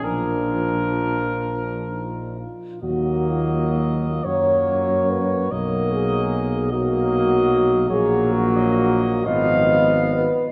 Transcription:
<<
  \new Staff \with { instrumentName = "Cornet" } { \time 6/8 \key ees \minor \tempo 4. = 45 bes'2~ bes'8 r8 | ees''4. des''4. | dis''4. dis''4. | des''8. ees''8. f''4~ f''16 r16 | }
  \new Staff \with { instrumentName = "French horn section" } { \time 6/8 \key ees \minor d'4. d'8 ees'8 f'8 | ges'8 f'4 des''4 ces''8 | ais'8 aes'4 fis'4. | aes'8 ges'4 ees''4 ces''8 | }
  \new Staff \with { instrumentName = "Trombone section" } { \time 6/8 \key ees \minor d'2~ d'16 r8. | bes4. bes4. | ais4. ais4. | bes4. ces'4. | }
  \new Staff \with { instrumentName = "Trombone" } { \clef bass \time 6/8 \key ees \minor f2~ f8 r8 | ges4. ges4. | fis4. fis4. | ges4. f4 r8 | }
  \new Staff \with { instrumentName = "Tuba" } { \clef bass \time 6/8 \key ees \minor bes,,2~ bes,,8 r8 | ees,4. ges,4. | b,,2. | bes,,4. aes,,4 r8 | }
>>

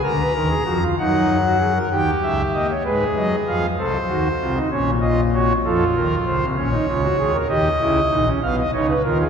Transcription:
<<
  \new Staff \with { instrumentName = "Pipe organ" } { \time 6/8 \key dis \phrygian \tempo 4. = 64 << { ais''4. fis''4. | g''8 e''8 dis''16 cis''16 b'8 dis''8 eis''8 | c''4. cis''8 dis''8 cis''8 | a'8 ais'8 c''8 cis''4. |
dis''4. eis''16 dis''16 cis''16 b'16 ais'16 gis'16 | } \\ { ais'16 b'16 ais'16 gis'16 fis'16 eis'16 dis'8. fis'16 gis'16 ais'16 | g'4. gis'4. | a'8 fis'8 f'16 ees'16 cis'8 eis'8 fis'8 | f'4. cis'16 dis'16 eis'16 fis'16 gis'16 ais'16 |
g'8 e'8 dis'16 cis'16 b8 dis'8 eis'8 | } >> }
  \new Staff \with { instrumentName = "Pipe organ" } { \clef bass \time 6/8 \key dis \phrygian <d, d>8 <dis, dis>8 <eis, eis>8 <fis, fis>4. | <dis, dis>8 <cis, cis>8 ais8 <gis, gis>8 <fis, fis>8 <eis, eis>8 | <c, c>8 <ees, ees>8 <c, c>8 <ais,, ais,>4. | <f, f>8 <ees, ees>8 <cis, cis>16 <c, c>16 <ais,, ais,>8 <cis, cis>8 <dis, dis>8 |
<dis, dis>8 <cis, cis>8 <ais,, ais,>8 <b,, b,>8 <cis, cis>8 <dis, dis>8 | }
>>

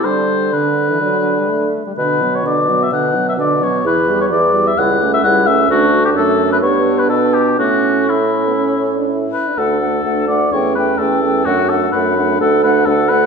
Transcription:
<<
  \new Staff \with { instrumentName = "Flute" } { \time 4/4 \key d \mixolydian \tempo 4 = 127 r1 | \key d \major r1 | r1 | r1 |
r1 | fis''8 fis''8 fis''8 fis''8 g''8 g''8 g''8 g''8 | fis''8 fis''8 fis''8 fis''8 fis''8 fis''8 fis''8 fis''8 | }
  \new Staff \with { instrumentName = "Oboe" } { \time 4/4 \key d \mixolydian c''4 b'2~ b'8 r8 | \key d \major b'8. cis''16 d''8. e''16 fis''8. e''16 d''8 cis''8 | b'8. cis''16 d''8. e''16 fis''8. e''16 fis''8 e''8 | fis'8. g'16 a'8. b'16 cis''8. b'16 a'8 g'8 |
fis'4 e'2 r8 b'8 | a'4. d''8 cis''8 b'8 a'4 | fis'8 a'8 b'4 a'8 b'8 a'8 b'8 | }
  \new Staff \with { instrumentName = "Clarinet" } { \time 4/4 \key d \mixolydian d'4 d'4 d'4. r8 | \key d \major d'8 b8 d'8 b8 d'8 b8 d'8 b8 | e'8 g'8 e'8 g'8 e'8 cis'8 e'8 cis'8 | d'4 d'4 d'2 |
cis'4 cis'2~ cis'8 r8 | d'8 d'8 d'8 d'8 cis'8 cis'8 cis'8 cis'8 | d'8 d'8 d'8 d'8 d'8 d'8 d'8 d'8 | }
  \new Staff \with { instrumentName = "French horn" } { \time 4/4 \key d \mixolydian g4 d8. e16 fis8. g16 a8. g16 | \key d \major d8 fis8 d8 fis8 d8 fis8 d8 fis8 | e8 g8 e8 g8 g8 a8 g8 a8 | a4 a4 b2 |
a4 a8. b16 cis'8. d'16 e'8. d'16 | a8 a8 a8 a8 a8 a8 a8 a8 | a8 a8 a8 a8 a8 a8 a8 a8 | }
  \new Staff \with { instrumentName = "Bassoon" } { \clef bass \time 4/4 \key d \mixolydian d2 d4. r8 | \key d \major b,4 b,4 b,4 b,4 | e,4 e,4 cis,4 cis,4 | d,4 fis,4 g,4 b,4 |
a,2.~ a,8 r8 | d,4 d,4 e,4 e,4 | fis,4 fis,4 d,4 d,4 | }
>>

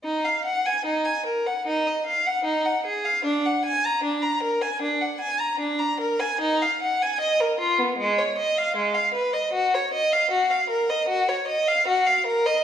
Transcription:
\new Staff \with { instrumentName = "Violin" } { \time 4/4 \key ees \minor \tempo 4 = 76 ees'16 f''16 ges''16 aes''16 ees'16 aes''16 bes'16 ges''16 ees'16 ees''16 f''16 ges''16 ees'16 ges''16 aes'16 f''16 | d'16 ges''16 aes''16 bes''16 d'16 bes''16 bes'16 aes''16 d'16 ges''16 aes''16 bes''16 d'16 bes''16 bes'16 aes''16 | ees'16 f''16 ges''16 aes''16 ees''16 bes'16 f'16 ces'16 aes16 des''16 ees''16 f''16 aes16 f''16 ces''16 ees''16 | ges'16 des''16 ees''16 f''16 ges'16 f''16 bes'16 ees''16 ges'16 des''16 ees''16 f''16 ges'16 f''16 bes'16 ees''16 | }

